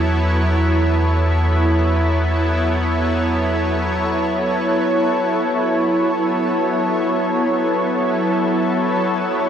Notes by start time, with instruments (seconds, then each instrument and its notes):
Already playing: analog synth bass E2, ambient pad F#3 B3 E4 A4 C#5
4.86 harp C#5
8.73 harp E5